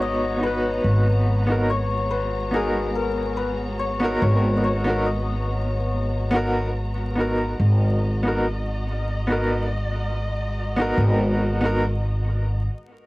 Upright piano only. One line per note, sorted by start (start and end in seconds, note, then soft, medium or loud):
0.00 0.35 B3 medium
0.00 0.36 D#4 medium
0.00 0.37 F#4 medium
0.00 0.38 C#5 medium
0.36 1.41 B3 medium
0.36 1.42 D#4 medium
0.43 1.44 F#4 medium
0.43 1.46 B4 medium
1.47 1.66 B3 medium
1.47 1.66 D#4 medium
1.47 1.67 F#4 medium
1.51 1.68 A#4 medium
2.51 2.84 B3 medium
2.51 2.85 D#4 medium
2.51 2.85 F#4 medium
2.56 2.86 A#4 medium
4.00 4.80 B3 medium
4.00 4.81 D#4 medium
4.00 4.82 F#4 medium
4.04 4.82 A#4 medium
4.84 5.04 B3 medium
4.84 5.04 D#4 medium
4.84 5.05 F#4 medium
4.89 5.06 A#4 medium
6.31 6.64 B3 medium
6.31 6.65 D#4 medium
6.31 6.66 F#4 medium
6.36 6.67 A#4 medium
7.15 7.49 B3 medium
7.15 7.49 D#4 medium
7.15 7.50 F#4 medium
7.20 7.51 A#4 medium
8.23 8.42 B3 medium
8.23 8.43 D#4 medium
8.23 8.44 F#4 medium
8.28 8.44 A#4 medium
9.27 9.60 B3 medium
9.27 9.61 D#4 medium
9.27 9.62 F#4 medium
9.32 9.62 A#4 medium
10.76 11.56 B3 medium
10.76 11.57 D#4 medium
10.76 11.58 F#4 medium
10.81 11.59 A#4 medium
11.61 11.80 B3 medium
11.61 11.80 D#4 medium
11.61 11.81 F#4 medium
11.66 11.82 A#4 medium